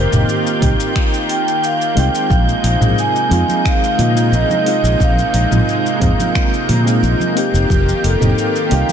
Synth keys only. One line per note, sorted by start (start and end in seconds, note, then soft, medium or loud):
0.12 0.58 A#3 medium
0.12 0.58 C4 medium
0.12 0.59 D#4 medium
0.12 0.59 G4 loud
0.59 1.42 A#3 medium
0.59 1.43 C4 medium
0.59 1.43 D#4 medium
0.59 1.44 G4 loud
1.94 2.76 G#3 medium
1.94 2.77 C4 medium
1.94 2.78 D#4 medium
1.94 2.78 F4 medium
2.80 3.27 G#3 medium
2.80 3.27 C4 medium
2.80 3.27 D#4 medium
2.80 3.28 F4 loud
3.29 4.12 G#3 loud
3.29 4.13 C4 medium
3.29 4.13 D#4 medium
3.29 4.14 F4 loud
4.15 4.62 G#3 medium
4.15 4.62 C4 medium
4.15 4.62 D#4 medium
4.15 4.63 F4 loud
4.64 5.46 G#3 medium
4.64 5.47 C4 medium
4.64 5.47 D#4 medium
4.64 5.48 F4 loud
5.50 5.97 G#3 medium
5.50 5.97 C4 medium
5.50 5.98 D#4 medium
5.50 5.98 F4 loud
5.99 6.82 G#3 medium
5.99 6.82 C4 medium
5.99 6.83 D#4 medium
5.99 6.84 F4 loud
6.85 7.32 G#3 loud
6.85 7.32 C4 medium
6.85 7.32 D#4 medium
6.85 7.33 F4 loud
7.34 8.16 A#3 medium
7.34 8.17 C4 medium
7.34 8.17 D#4 medium
7.34 8.18 G4 loud
8.20 8.66 A#3 medium
8.20 8.67 C4 medium
8.20 8.67 D#4 medium
8.20 8.67 G4 loud
8.69 8.92 A#3 medium
8.69 8.92 C4 medium
8.69 8.92 D#4 medium
8.69 8.92 G4 loud